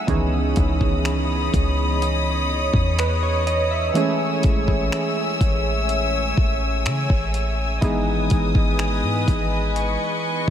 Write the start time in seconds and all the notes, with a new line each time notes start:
0.07 C#2 D#3 B3 C#4 D#4 G#4 C#5 D#5 B5 D#6, kick, closed hi-hat
0.14 E3
0.56 C#2, kick, closed hi-hat
0.81 kick
1.05 finger snap, closed hi-hat
1.54 C#2, kick, closed hi-hat
2.02 closed hi-hat
2.74 E2, kick
2.99 B4, finger snap, closed hi-hat
3.23 C#5
3.47 D#5, closed hi-hat
3.71 E5
3.94 E3 G#3 A3 C#4 G#4 E5 G#5 E6, closed hi-hat
4.43 A1, kick, closed hi-hat
4.68 kick
4.92 finger snap, closed hi-hat
5.41 A1, kick, closed hi-hat
5.89 closed hi-hat
6.37 A1, kick
6.85 C#3, finger snap, closed hi-hat
7.10 A1, kick
7.34 closed hi-hat
7.81 G#1 E3 G#3 B3 D#4 G#4 B4 D#5 D#6, kick, closed hi-hat
8.30 G#1, kick, closed hi-hat
8.55 G#1, kick
8.79 finger snap, closed hi-hat
9.03 G#2
9.28 G#1, kick, closed hi-hat
9.76 C#6, closed hi-hat